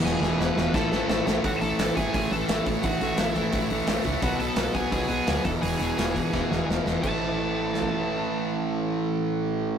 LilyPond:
<<
  \new Staff \with { instrumentName = "Lead electric guitar" } { \time 4/4 \key e \mixolydian \tempo 4 = 172 <gis' gis''>4 <b' b''>4 <a' a''>4. r8 | <fis' fis''>8 <a' a''>4 <gis' gis''>8 <gis' gis''>8 <a' a''>4 r8 | <fis' fis''>4 <e' e''>4. r4. | <fis' fis''>8 <a' a''>4 <gis' gis''>8 <gis' gis''>8 <gis' gis''>4 <a' a''>8 |
<gis' gis''>2. r4 | a''1~ | a''1 | }
  \new Staff \with { instrumentName = "Distorted electric guitar" } { \clef bass \time 4/4 \key e \mixolydian <e, b, e>8 <e, b, e>8 <e, b, e>8 <e, b, e>8 <a, e a>8 <a, e a>8 <a, e a>8 <a, e a>8 | <a, e a>8 <a, e a>8 <a, e a>8 <a, e a>8 <a, e a>8 <a, e a>8 <a, e a>8 <a, e a>8 | <a, e a>8 <a, e a>8 <a, e a>8 <a, e a>8 <a, e a>8 <a, e a>8 <a, e a>8 <a, e a>8 | <b, fis b>8 <b, fis b>8 <b, fis b>8 <b, fis b>8 <b, fis b>8 <b, fis b>8 <b, fis b>8 <e, b, e>8 |
<e, b, e>8 <e, b, e>8 <e, b, e>8 <e, b, e>8 <e, b, e>8 <e, b, e>8 <e, b, e>8 <e, b, e>8 | <a, e a>1~ | <a, e a>1 | }
  \new Staff \with { instrumentName = "Distorted electric guitar" } { \clef bass \time 4/4 \key e \mixolydian <e, b, e>8 <e, b, e>8 <e, b, e>8 <e, b, e>8 <a, e a>8 <a, e a>8 <a, e a>8 <a, e a>8 | <a, e a>8 <a, e a>8 <a, e a>8 <a, e a>8 <a, e a>8 <a, e a>8 <a, e a>8 <a, e a>8 | <a, e a>8 <a, e a>8 <a, e a>8 <a, e a>8 <a, e a>8 <a, e a>8 <a, e a>8 <a, e a>8 | <b, fis b>8 <b, fis b>8 <b, fis b>8 <b, fis b>8 <b, fis b>8 <b, fis b>8 <b, fis b>8 <e, b, e>8 |
<e, b, e>8 <e, b, e>8 <e, b, e>8 <e, b, e>8 <e, b, e>8 <e, b, e>8 <e, b, e>8 <e, b, e>8 | <a, e a>1~ | <a, e a>1 | }
  \new Staff \with { instrumentName = "Distorted electric guitar" } { \clef bass \time 4/4 \key e \mixolydian <e, b, e>8 <e, b, e>8 <e, b, e>8 <e, b, e>8 <a, e a>8 <a, e a>8 <a, e a>8 <a, e a>8 | r1 | r1 | r1 |
r1 | r1 | r1 | }
  \new Staff \with { instrumentName = "FM bass" } { \clef bass \time 4/4 \key e \mixolydian e,,8 e,,8 e,,8 e,,8 a,,8 a,,8 a,,8 a,,8 | a,,8 a,,8 a,,8 a,,8 a,,8 a,,8 a,,8 a,,8 | a,,8 a,,8 a,,4 a,,8 a,,8 a,,8 cis,8 | b,,8 b,,8 b,,8 b,,8 b,,8 b,,8 d,8 e,,8 |
e,,8 e,,8 e,,4 e,,8 e,,8 e,,8 e,,8 | a,,1~ | a,,1 | }
  \new DrumStaff \with { instrumentName = "Drums" } \drummode { \time 4/4 sn8 sn8 sn8 sn8 <bd sn>8 sn8 sn8 sn8 | <hho bd>8 hho8 <hho sn>8 <hho bd>8 <hho bd>8 hho8 <hho sn>8 <hho bd>8 | <hho bd>8 hho8 <hho sn>8 <hho bd>8 <hho bd>8 hho8 <hho sn>8 <hho bd>8 | <hho bd>8 hho8 <hho sn>8 <hho bd>8 <hho bd>8 hho8 <hho sn>8 <hho bd>8 |
hho8 hho8 <hho sn>8 <hho bd>8 <bd sn>8 sn8 sn8 sn8 | <cymc bd>4 r4 sn16 bd8. r4 | r4 r4 r4 r4 | }
>>